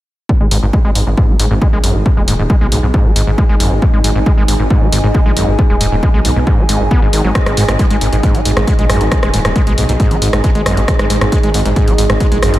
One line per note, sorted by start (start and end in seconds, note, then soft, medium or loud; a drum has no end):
0.29 0.33 G#2 medium
0.29 12.59 D#4 medium
0.29 kick loud
0.40 0.48 G#1 medium
0.40 0.46 G#3 medium
0.51 0.59 G#1 loud
0.51 0.58 G#2 loud
0.51 open hi-hat loud
0.63 0.70 G#1 medium
0.63 0.66 G#2 loud
0.71 0.80 G#3 medium
0.71 12.59 G#4 medium
0.71 kick loud
0.85 0.92 G#1 medium
0.85 0.91 G#3 loud
0.95 1.04 G#1 loud
0.95 1.02 G#2 medium
0.95 open hi-hat loud
1.07 1.15 G#1 medium
1.07 1.10 G#2 medium
1.17 1.30 G#2 medium
1.17 kick loud
1.29 1.37 G#1 medium
1.29 1.35 G#3 medium
1.40 1.48 G#1 loud
1.40 1.46 G#2 loud
1.40 12.59 D#5 medium
1.40 open hi-hat loud
1.51 1.59 G#1 medium
1.51 1.54 G#2 medium
1.62 1.68 G#3 medium
1.62 kick loud
1.72 1.81 A#1 medium
1.72 1.79 G#3 loud
1.72 12.59 G#5 medium
1.84 1.92 G#1 loud
1.84 1.96 F#2 medium
1.84 open hi-hat loud
1.95 2.03 G#1 medium
1.95 1.98 G#2 medium
2.06 2.09 G#2 medium
2.06 kick loud
2.17 2.25 D#1 medium
2.17 2.23 G#3 medium
2.28 2.36 D#1 loud
2.28 2.34 G#2 loud
2.28 open hi-hat loud
2.39 2.47 D#1 medium
2.39 2.43 G#2 loud
2.50 2.56 G#3 medium
2.50 kick loud
2.61 2.69 B1 medium
2.61 2.67 G#3 loud
2.72 2.80 B1 loud
2.72 2.78 G#2 medium
2.72 open hi-hat loud
2.83 2.91 B1 medium
2.83 2.87 G#2 medium
2.94 3.07 G#2 medium
2.94 kick loud
3.05 3.13 G#1 medium
3.05 3.11 G#3 medium
3.16 3.24 G#1 loud
3.16 3.22 G#2 loud
3.16 open hi-hat loud
3.27 3.35 G#1 medium
3.27 3.31 G#2 loud
3.38 3.44 G#3 medium
3.38 kick loud
3.49 3.57 G#1 medium
3.49 3.55 G#3 loud
3.60 3.68 G#1 loud
3.60 3.73 F#2 medium
3.60 open hi-hat loud
3.71 3.79 G#1 medium
3.71 3.75 G#2 medium
3.82 3.86 G#2 medium
3.82 kick loud
3.93 4.01 G#1 medium
3.93 3.99 G#3 medium
4.04 4.12 G#1 medium
4.04 4.10 G#2 loud
4.04 open hi-hat loud
4.15 4.23 G#1 medium
4.15 4.19 G#2 loud
4.26 4.32 G#3 medium
4.26 kick loud
4.38 4.45 G#1 medium
4.38 4.43 G#3 loud
4.48 4.57 G#1 loud
4.48 4.55 G#2 medium
4.48 open hi-hat loud
4.60 4.67 G#1 medium
4.60 4.63 G#2 medium
4.70 4.83 G#2 medium
4.70 kick loud
4.82 4.90 G#1 medium
4.82 4.88 G#3 medium
4.92 5.01 G#1 loud
4.92 4.99 G#2 loud
4.92 open hi-hat loud
5.04 5.12 G#1 medium
5.04 5.07 G#2 loud
5.14 5.21 G#3 medium
5.14 kick loud
5.26 5.34 A#1 medium
5.26 5.32 G#3 loud
5.37 5.45 G#1 loud
5.37 5.49 F#2 medium
5.37 open hi-hat loud
5.48 5.56 G#1 medium
5.48 5.51 G#2 medium
5.59 5.62 G#2 medium
5.59 kick loud
5.70 5.78 D#1 medium
5.70 5.76 G#3 medium
5.81 5.89 D#1 loud
5.81 5.87 G#2 loud
5.81 open hi-hat loud
5.92 6.00 D#1 medium
5.92 5.96 G#2 loud
6.03 6.09 G#3 medium
6.03 kick loud
6.14 6.22 B1 medium
6.14 6.20 G#3 loud
6.25 6.33 B1 loud
6.25 6.31 G#2 medium
6.25 open hi-hat loud
6.36 6.44 B1 medium
6.36 6.40 G#2 medium
6.47 6.60 G#2 medium
6.47 kick loud
6.58 6.66 G#1 medium
6.58 6.64 G#3 medium
6.69 6.77 G#1 loud
6.69 6.82 G#2 medium
6.69 open hi-hat loud
6.80 6.88 G#1 medium
6.80 6.84 F#2 loud
6.91 7.00 B3 loud
6.91 kick loud
7.02 7.10 G#1 medium
7.02 7.08 G#2 medium
7.13 7.21 G#1 loud
7.13 7.22 D#3 medium
7.13 open hi-hat loud
7.24 7.32 G#1 loud
7.24 7.30 F#3 medium
7.35 7.39 G#2 medium
7.35 kick loud
7.35 cross-stick loud
7.35 closed hi-hat medium
7.46 7.54 G#1 medium
7.46 7.52 G#3 medium
7.46 cross-stick medium
7.46 closed hi-hat soft
7.57 7.65 G#1 loud
7.57 7.63 G#2 loud
7.57 open hi-hat loud
7.68 7.76 G#1 medium
7.68 7.72 G#2 loud
7.68 cross-stick loud
7.68 closed hi-hat soft
7.79 7.85 G#3 medium
7.79 kick loud
7.79 closed hi-hat medium
7.91 7.98 G#1 medium
7.91 7.96 G#3 loud
7.91 closed hi-hat soft
8.01 8.10 G#1 loud
8.01 8.08 G#2 medium
8.01 open hi-hat loud
8.13 8.20 G#1 medium
8.13 8.16 G#2 medium
8.13 closed hi-hat soft
8.23 8.36 G#2 medium
8.23 kick loud
8.23 closed hi-hat medium
8.35 8.42 G#1 medium
8.35 8.41 G#3 medium
8.35 closed hi-hat soft
8.45 8.54 G#1 loud
8.45 8.52 G#2 loud
8.45 open hi-hat loud
8.57 8.65 G#1 medium
8.57 8.60 G#2 loud
8.57 cross-stick medium
8.57 closed hi-hat soft
8.67 8.74 G#3 medium
8.67 kick loud
8.67 closed hi-hat medium
8.79 8.87 A#1 medium
8.79 8.85 G#3 loud
8.79 closed hi-hat soft
8.90 8.98 G#1 loud
8.90 9.02 F#2 medium
8.90 cross-stick loud
8.90 open hi-hat loud
9.01 9.09 G#1 medium
9.01 9.04 G#2 medium
9.01 closed hi-hat soft
9.12 9.15 G#2 medium
9.12 kick loud
9.12 cross-stick medium
9.12 closed hi-hat medium
9.23 9.31 D#1 medium
9.23 9.29 G#3 medium
9.23 cross-stick loud
9.23 closed hi-hat soft
9.34 9.42 D#1 loud
9.34 9.40 G#2 loud
9.34 open hi-hat loud
9.45 9.53 D#1 medium
9.45 9.48 G#2 loud
9.45 cross-stick loud
9.45 closed hi-hat soft
9.56 9.62 G#3 medium
9.56 kick loud
9.56 closed hi-hat medium
9.67 9.75 B1 medium
9.67 9.73 G#3 loud
9.67 closed hi-hat soft
9.78 9.86 B1 loud
9.78 9.84 G#2 medium
9.78 open hi-hat loud
9.89 9.97 B1 medium
9.89 9.93 G#2 medium
9.89 closed hi-hat soft
10.00 10.13 G#2 medium
10.00 kick loud
10.00 closed hi-hat medium
10.11 10.19 G#1 medium
10.11 10.17 G#3 medium
10.11 closed hi-hat soft
10.22 10.30 G#1 loud
10.22 10.28 G#2 loud
10.22 open hi-hat loud
10.33 10.41 G#1 medium
10.33 10.37 G#2 loud
10.33 cross-stick medium
10.33 closed hi-hat soft
10.44 10.50 G#3 medium
10.44 kick loud
10.44 closed hi-hat medium
10.55 10.63 G#1 medium
10.55 10.61 G#3 loud
10.55 closed hi-hat soft
10.66 10.74 G#1 loud
10.66 10.79 F#2 medium
10.66 cross-stick loud
10.66 open hi-hat loud
10.77 10.85 G#1 medium
10.77 10.81 G#2 medium
10.77 closed hi-hat soft
10.88 10.92 G#2 medium
10.88 kick loud
10.88 cross-stick medium
10.88 closed hi-hat medium
10.99 11.07 G#1 medium
10.99 11.05 G#3 medium
10.99 cross-stick medium
10.99 closed hi-hat soft
11.10 11.18 G#1 loud
11.10 11.16 G#2 loud
11.10 open hi-hat loud
11.21 11.29 G#1 medium
11.21 11.25 G#2 loud
11.21 cross-stick medium
11.21 closed hi-hat medium
11.32 11.38 G#3 medium
11.32 kick loud
11.32 closed hi-hat medium
11.43 11.51 G#1 medium
11.43 11.49 G#3 loud
11.43 closed hi-hat soft
11.54 11.62 G#1 loud
11.54 11.60 G#2 medium
11.54 open hi-hat loud
11.65 11.73 G#1 medium
11.65 11.69 G#2 medium
11.65 closed hi-hat soft
11.76 11.89 G#2 medium
11.76 kick loud
11.76 closed hi-hat medium
11.88 11.95 G#1 medium
11.88 11.93 G#3 medium
11.88 closed hi-hat medium
11.98 12.07 G#1 loud
11.98 12.05 G#2 loud
11.98 open hi-hat medium
12.10 12.17 G#1 medium
12.10 12.13 G#2 loud
12.10 cross-stick medium
12.10 closed hi-hat soft
12.20 12.27 G#3 medium
12.20 kick loud
12.20 closed hi-hat medium
12.32 12.40 A#1 medium
12.32 12.38 G#3 loud
12.32 closed hi-hat soft
12.42 12.51 G#1 loud
12.42 12.55 F#2 medium
12.42 cross-stick loud
12.42 open hi-hat loud
12.54 12.59 G#1 medium
12.54 12.57 G#2 medium
12.54 closed hi-hat medium